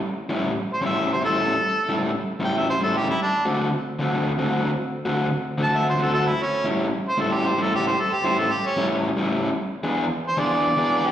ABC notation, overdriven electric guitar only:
X:1
M:4/4
L:1/8
Q:"Swing" 1/4=151
K:Amix
V:1 name="Overdriven electric guitar"
z [A,,G,CE] z2 [A,,G,CE] z [A,,G,CE] z | z [A,,G,CE] z2 [A,,G,CE] z [A,,G,CE] z | z [D,A,=CF] z2 [D,A,CF] z [D,A,CF] z | z [D,A,=CF] z2 [D,A,CF] z [D,A,CF] z |
z [A,,G,CE] z2 [A,,G,CE] z [A,,G,CE] z | z [A,,G,CE] z2 [A,,G,CE] z [A,,G,CE] z | z [E,B,D^G] z2 [E,B,DG] z [E,B,DG] z |]